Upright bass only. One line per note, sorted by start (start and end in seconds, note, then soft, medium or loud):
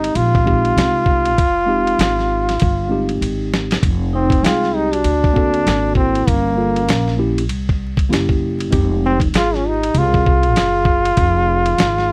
0.00 0.12 G1 medium
0.15 0.73 A#1 medium
0.77 1.38 C2 medium
1.38 1.96 F1 medium
1.99 2.57 G#1 medium
2.62 3.19 G1 medium
3.21 3.79 G#1 medium
3.83 4.41 F1 medium
4.43 5.02 C2 medium
5.05 5.63 D2 medium
5.66 6.24 G#1 medium
6.27 6.86 G1 medium
6.88 7.49 A#1 medium
7.49 8.08 C2 loud
8.10 8.69 F#1 medium
8.73 9.31 F1 loud
9.33 9.91 G#1 medium
9.94 10.56 C2 loud
10.56 11.14 F#1 loud
11.17 11.75 F1 loud
11.78 12.12 G#1 medium